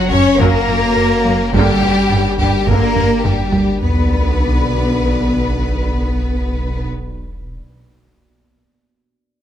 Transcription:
Already playing: sub bass F#1, cello section F#3, synth drone F#3 C#4 F#4 F#5
0.10 analog synth bass F#2, double bass section F#2, viola section F#3 C#4, french horn section C#4, cello section C#4, violin section C#5 C#6, taiko low
0.39 analog synth bass F#2, double bass section F#2, viola section F#3 C#4, french horn section A#3, cello section A#3, violin section A#4 A#5, taiko
0.68 analog synth bass F#2, double bass section F#2, viola section F#3 C#4
0.96 analog synth bass F#2
1.25 double bass section F#2, analog synth bass F#3, viola section F#3 C#4
1.53 sub bass G1, analog synth bass G2, double bass section G2, viola section D3 A#3, french horn section G3, cello section G3, synth drone A#3 D4 G4 D5, violin section G4 G5, taiko
1.82 analog synth bass G2, double bass section G2, viola section D3 A#3
2.10 analog synth bass G2, double bass section G2, viola section D3 A#3
2.38 analog synth bass G2, double bass section G2, viola section D3 A#3, cello section G3, french horn section G3, violin section G4 G5, taiko low
2.67 analog synth bass G2, double bass section G2, viola section D3 A#3, cello section A#3, french horn section A#3, violin section A#4 A#5, taiko
2.95 analog synth bass G2, double bass section G2, viola section D3 A#3, taiko low-mid
3.24 analog synth bass G2, french horn section G3, cello section G3, violin section G4 G5, taiko low-mid
3.53 double bass section G2, viola section D3 A#3, analog synth bass G3, taiko low
3.81 sub bass B1, double bass section B1, viola section D3 D4, french horn section B3, cello section B3, synth drone B3 D4 F#4 D5, violin section B4 B5, sub drop

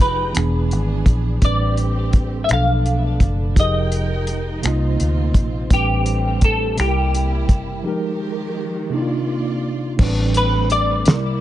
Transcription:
Already playing: fingered electric bass F1, string section F3 G#3 D#4 G5 A#5, tine electric piano F3 D#4 F4 G4 G#4
0.01 clean electric guitar B4
0.33 fingered electric bass E1, tine electric piano E3 B3 D4, string section E3 B3 D4 G#4, closed hi-hat
0.37 tine electric piano G#4, finger snap
0.71 fingered electric bass G#1, closed hi-hat
1.06 fingered electric bass A#1, kick, closed hi-hat
1.40 fingered electric bass A1, tine electric piano A2 G3 C4 D4, string section A3 C4 G4, kick, closed hi-hat
1.45 tine electric piano B4, clean electric guitar D5
1.77 closed hi-hat
2.13 kick, closed hi-hat
2.44 tine electric piano B2, clean electric guitar E5
2.49 fingered electric bass B1, tine electric piano F3 D4, string section B3 D4, finger snap, closed hi-hat
2.53 tine electric piano A4, clean electric guitar F5
2.86 closed hi-hat
3.20 fingered electric bass F#1, kick, closed hi-hat
3.55 fingered electric bass F1, tine electric piano F3 D#4 G4, string section F3 G#3 D#4 A#4 G5, kick, closed hi-hat
3.59 tine electric piano G#4 A#4, clean electric guitar D#5
3.92 closed hi-hat
4.27 closed hi-hat
4.62 fingered electric bass C2, tine electric piano C3 A#3 D#4, string section C3 A#3 C4 F4, finger snap, closed hi-hat
4.66 tine electric piano F4 D#5
5.00 fingered electric bass D2, closed hi-hat
5.34 fingered electric bass A#1, kick, closed hi-hat
5.69 fingered electric bass A1, tine electric piano A2 G3 C4 D4, string section G3 A3 C4, kick, closed hi-hat
5.73 clean electric guitar G4, tine electric piano B4
6.06 closed hi-hat
6.41 clean electric guitar A4, kick, closed hi-hat
6.76 fingered electric bass C2, tine electric piano C3 G3 E4, string section C3 A#3 E4, finger snap, closed hi-hat
6.80 clean electric guitar G4, tine electric piano A4
6.88 tine electric piano A#4
7.14 closed hi-hat
7.49 fingered electric bass F#1, kick, closed hi-hat
7.83 string section D#3 F3 G#3 G4 A#4, tine electric piano F3 G#3 D#4 G4
7.88 tine electric piano A#4
8.90 tine electric piano C3 A#3 D4, string section C3 A#3 F4 D5
8.94 tine electric piano D#4 E4
9.01 tine electric piano F4
9.97 fingered electric bass A1, tine electric piano A2 G3 B3 D4, string section G3 A3 C4, kick, crash
10.03 tine electric piano C4 B4
10.34 clean electric guitar B4, closed hi-hat
10.70 clean electric guitar D5, closed hi-hat
11.05 fingered electric bass C2, tine electric piano C3 G3 E4, string section C3 G3 A#3 E4, snare, closed hi-hat
11.10 tine electric piano A#4

